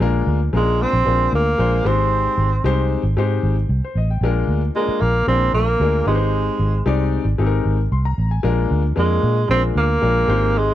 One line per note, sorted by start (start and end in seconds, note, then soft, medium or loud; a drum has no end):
0.00 0.21 A#1 loud
0.00 0.38 G#3 medium
0.00 0.38 A#3 medium
0.00 0.38 D4 medium
0.00 0.38 F4 medium
0.00 0.39 A#4 loud
0.27 0.48 D2 loud
0.53 0.85 A#1 loud
0.53 0.90 G#3 medium
0.53 0.84 G#3 loud
0.53 0.91 A#3 medium
0.53 0.60 C#4 medium
0.53 0.91 F4 medium
0.53 0.91 A#4 medium
0.60 0.94 D4 medium
0.82 1.34 C4 loud
0.93 1.04 A#1 medium
1.05 1.27 A#1 medium
1.05 1.43 G#3 medium
1.05 1.43 A#3 medium
1.05 1.43 D4 medium
1.05 1.44 F4 medium
1.05 1.44 A#4 medium
1.33 1.53 D2 loud
1.33 1.88 A#3 loud
1.58 1.80 A#1 loud
1.58 1.83 G#3 medium
1.58 1.85 A#3 medium
1.58 1.86 D4 medium
1.58 1.86 F4 medium
1.58 1.85 C5 medium
1.85 2.27 G#1 medium
1.85 2.48 G#3 medium
1.85 2.48 C4 medium
1.85 2.92 C4 loud
1.85 2.49 D#4 medium
1.85 2.49 G4 medium
1.85 2.49 C5 loud
2.38 2.59 G#1 medium
2.64 2.95 C2 loud
2.64 3.01 G#3 medium
2.64 3.02 C4 medium
2.64 3.02 D#4 medium
2.64 3.02 G4 medium
2.64 3.02 C5 loud
3.03 3.14 G#1 medium
3.17 3.38 G#2 loud
3.17 3.54 G#3 medium
3.17 3.54 C4 medium
3.17 3.54 D#4 medium
3.17 3.55 G4 medium
3.17 3.55 C5 loud
3.43 3.64 G#1 medium
3.69 3.80 C2 medium
3.84 3.96 C5 medium
3.95 4.17 A1 loud
3.95 4.09 D#5 medium
4.10 4.35 G5 medium
4.21 4.42 A#1 loud
4.21 4.60 G#3 medium
4.21 4.60 A#3 medium
4.21 4.60 D4 medium
4.21 4.61 F4 medium
4.21 4.61 A#4 loud
4.48 4.69 D2 loud
4.76 5.03 G#3 medium
4.76 5.13 G#3 medium
4.76 5.13 A#3 medium
4.76 5.13 D4 medium
4.76 5.13 F4 medium
4.76 5.13 A#4 medium
4.88 muted fingered electric bass stroke soft
5.01 5.22 A#1 medium
5.01 5.27 A#3 loud
5.27 5.49 A#1 loud
5.27 5.65 G#3 medium
5.27 5.65 A#3 medium
5.27 5.52 C4 loud
5.27 5.65 D4 medium
5.27 5.65 F4 medium
5.27 5.66 A#4 medium
5.53 5.75 A#1 loud
5.53 6.04 A#3 loud
5.80 6.01 D2 medium
5.80 6.05 G#3 medium
5.80 6.07 A#3 medium
5.80 6.07 D4 medium
5.80 6.08 F4 medium
5.80 6.08 A#4 medium
6.07 6.48 G#1 loud
6.07 6.70 G#3 medium
6.07 7.09 G#3 medium
6.07 6.70 C4 medium
6.07 6.71 D#4 medium
6.07 6.71 G4 medium
6.07 6.14 B4 medium
6.15 6.74 C5 medium
6.59 6.80 G#1 loud
6.86 7.17 C2 loud
6.86 7.23 G#3 loud
6.86 7.23 C4 medium
6.86 7.23 D#4 medium
6.86 7.24 G4 medium
6.86 7.24 D5 loud
7.25 7.36 G#1 medium
7.38 7.60 G#1 loud
7.38 7.76 G#3 medium
7.38 7.76 C4 medium
7.38 7.76 D#4 medium
7.38 7.77 G4 medium
7.38 7.46 A4 medium
7.46 7.80 A#4 medium
7.65 7.86 G#1 loud
7.92 8.13 C2 loud
7.92 8.04 C6 medium
8.05 8.30 A#5 medium
8.18 8.39 A1 loud
8.31 8.56 G#5 medium
8.43 8.65 A#1 medium
8.43 8.81 G#3 loud
8.43 8.81 A#3 medium
8.43 8.81 D4 medium
8.43 8.81 F4 medium
8.43 8.82 A#4 loud
8.71 8.92 D2 loud
8.96 9.18 F2 loud
8.96 9.34 G#3 medium
8.96 9.47 G#3 medium
8.96 9.34 A#3 medium
8.96 9.34 D4 medium
8.96 9.34 F4 medium
8.96 9.34 A#4 medium
9.23 9.44 A#2 loud
9.49 9.70 A#1 medium
9.49 9.86 G#3 medium
9.49 9.86 A#3 medium
9.49 9.62 C4 loud
9.49 9.87 D4 medium
9.49 9.87 F4 medium
9.49 9.56 G#4 medium
9.57 9.90 A#4 medium
9.76 9.97 D2 loud
9.76 10.60 A#3 loud
10.02 10.23 A#1 loud
10.02 10.26 G#3 medium
10.02 10.29 A#3 medium
10.02 10.29 D4 medium
10.02 10.29 F4 medium
10.02 10.29 A#4 medium
10.28 10.70 G#1 loud
10.28 10.74 G#3 medium
10.28 10.74 C4 medium
10.28 10.74 D#4 medium
10.28 10.74 G4 medium
10.28 10.74 C5 medium
10.59 10.74 G#3 loud